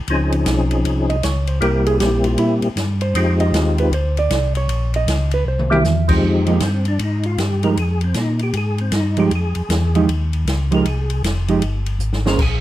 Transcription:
0.08 tonewheel organ C#2 F3 C4 C#4 D#4 G#4, ride
0.32 ride
0.46 tonewheel organ B1, snare, hi-hat pedal, ride
0.71 ride
0.85 tonewheel organ C2, ride
1.10 hollow-body jazz guitar D#5, ride
1.23 tonewheel organ C#2, hollow-body jazz guitar C#5, snare, hi-hat pedal, ride
1.47 hollow-body jazz guitar C5, ride
1.61 tonewheel organ C2 G3 A#3 C4 E4 G4, hollow-body jazz guitar A#4, ride
1.86 hollow-body jazz guitar G#4, ride
1.99 tonewheel organ A#1, hollow-body jazz guitar G4, snare, hi-hat pedal, ride
2.24 hollow-body jazz guitar F4, ride
2.37 tonewheel organ A#2, hollow-body jazz guitar E4, ride
2.62 tonewheel organ A#2, ride
2.76 tonewheel organ G2, snare, hi-hat pedal, ride
3.01 hollow-body jazz guitar C5, ride
3.14 tonewheel organ F2 G#3 C4 D#4 F4 G4, ride
3.40 hollow-body jazz guitar D#5, ride
3.53 tonewheel organ D#2, snare, hi-hat pedal, ride
3.78 hollow-body jazz guitar B4, ride
3.91 tonewheel organ D2, hollow-body jazz guitar C5, ride
4.17 hollow-body jazz guitar D5, ride
4.30 tonewheel organ C2, snare, hi-hat pedal, ride
4.55 hollow-body jazz guitar C#5, ride
4.68 tonewheel organ A#1, ride
4.94 hollow-body jazz guitar D#5, ride
5.07 tonewheel organ C#2, snare, hi-hat pedal, ride
5.31 hollow-body jazz guitar B4, ride
5.46 tonewheel organ C2, hollow-body jazz guitar C5
5.59 mid tom
5.70 tonewheel organ G3 A#3 C4 E4 G4, hollow-body jazz guitar E5, mid tom
5.84 tonewheel organ E2, snare, hi-hat pedal
6.08 tonewheel organ F3 G#3 C4 D#4 G4, kick, crash
6.23 tonewheel organ F2
6.46 hollow-body jazz guitar F3 G#3 D#4 G4, tonewheel organ A#3, ride
6.60 tonewheel organ G2 C4, snare, hi-hat pedal, ride
6.85 tonewheel organ D4, ride
6.99 tonewheel organ G#2, ride
7.04 tonewheel organ D#4
7.23 tonewheel organ F4, ride
7.38 tonewheel organ G2 G4, snare, hi-hat pedal, ride
7.63 hollow-body jazz guitar F3 G#3 D#4 G4, tonewheel organ A#4, ride
7.76 tonewheel organ F2 G#4, ride
8.01 tonewheel organ C4, ride
8.14 tonewheel organ A#2, snare, hi-hat pedal, ride
8.18 tonewheel organ D#4
8.39 tonewheel organ G4, ride
8.53 tonewheel organ G#2, ride
8.57 tonewheel organ G#4
8.78 tonewheel organ C4, ride
8.92 tonewheel organ G2 D#4, snare, hi-hat pedal, ride
9.17 hollow-body jazz guitar F3 G#3 D#4 G4, tonewheel organ G4, ride
9.31 tonewheel organ F2, ride
9.35 tonewheel organ G#4
9.55 tonewheel organ F2, ride
9.69 tonewheel organ E2, snare, hi-hat pedal, ride
9.95 hollow-body jazz guitar F3 G#3 D#4 G4, ride
10.07 tonewheel organ D#2, ride
10.33 ride
10.45 tonewheel organ C#2, snare, hi-hat pedal, ride
10.71 hollow-body jazz guitar F3 G#3 D#4 G4, tonewheel organ A#4, ride
10.85 tonewheel organ C2 G#4, ride
11.10 ride
11.23 tonewheel organ F1, snare, hi-hat pedal, ride
11.48 hollow-body jazz guitar F3 G#3 D#4 G4, ride
11.61 tonewheel organ G1, ride
11.86 ride
11.99 tonewheel organ G#1, hi-hat pedal
12.13 snare
12.26 hollow-body jazz guitar A#3 C#4 G#4 C5, tonewheel organ A#4, snare
12.38 tonewheel organ A#1 G#4, kick, crash

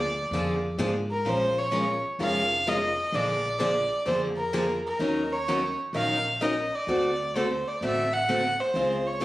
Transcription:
Already playing: upright bass D2, violin D5
0.31 upright bass F2, steel-string acoustic guitar D3 F3 A#3 D4 G#4
0.78 upright bass G#2, steel-string acoustic guitar D3 F3 A#3 D4 G#4
1.11 violin A#4
1.25 upright bass A#1, steel-string acoustic guitar F3 G#3 C#4 F4 A#4
1.29 violin C5
1.59 violin C#5
1.71 steel-string acoustic guitar F3 G#3 C#4 F4 A#4
2.19 upright bass F1, steel-string acoustic guitar F3 G#3 C#4 F4 A#4
2.24 violin F5
2.67 steel-string acoustic guitar F3 G#3 C#4 F4 A#4, violin D#5
3.12 upright bass A#1, steel-string acoustic guitar D3 F3 A#3 D4 G#4, violin D5
3.59 steel-string acoustic guitar D3 F3 A#3 D4 G#4, violin D5
4.06 upright bass F2, steel-string acoustic guitar D3 F3 A#3 D4 G#4, violin C5
4.37 violin A#4
4.53 steel-string acoustic guitar D3 F3 A#3 D4 G#4
4.87 violin A#4
4.99 upright bass D#2, steel-string acoustic guitar D#3 F#3 C#4 D#4 A#4
5.32 violin C#5
5.48 steel-string acoustic guitar D#3 F#3 C#4 D#4 A#4
5.93 upright bass A#1, steel-string acoustic guitar D#3 F#3 C#4 D#4 A#4, violin F5
6.41 steel-string acoustic guitar D#3 F#3 C#4 D#4 A#4, violin D#5
6.75 violin D5
6.87 upright bass D2, steel-string acoustic guitar D3 A3 C4 F#4 A4
7.35 steel-string acoustic guitar D3 A3 C4 F#4 A4, violin C5
7.68 violin D5
7.81 upright bass A1, steel-string acoustic guitar D3 A3 C4 F#4 A4
7.85 violin E5
8.13 violin F#5
8.29 steel-string acoustic guitar D3 A3 C4 F#4 A4
8.60 violin C5
8.74 upright bass C#2, steel-string acoustic guitar C#3 G#3 C4 F4 G#4
9.07 violin C#5
9.20 steel-string acoustic guitar C#3 G#3 C4 F4 G#4

